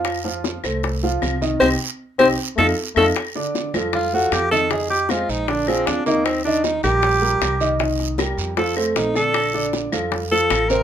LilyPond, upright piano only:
\new Staff \with { instrumentName = "Upright piano" } { \time 4/4 \key f \major \tempo 4 = 155 <f f' f''>8 <f f' f''>4 <a a' c''>4 <f f' f''>4 <ees ees' ees''>8 | <c' ees' g'>8 r4 <c' ees' g'>8 r8 <ees' f' a'>8 r8 <ees' f' a'>8 | \key f \mixolydian r8 <d d' d''>4 <f f' a'>4 <f f' a'>4 <ees ees' ees''>8 | <ees ees' ees''>4 <aes aes' c''>4 <d d' d''>8 <f f' aes'>4 <ees ees' ees''>8~ |
<ees ees' ees''>8 <ees ees' ees''>4 <g g' bes'>4 <g g' bes'>4 <ees ees' ees''>8 | <ees ees' ees''>4 <g g' bes'>4 <f f' f''>8 <a a' c''>4 <d d' d''>8~ | <d d' d''>8 <d d' d''>4 <f f' a'>4 <f f' a'>4 <c c' c''>8 | }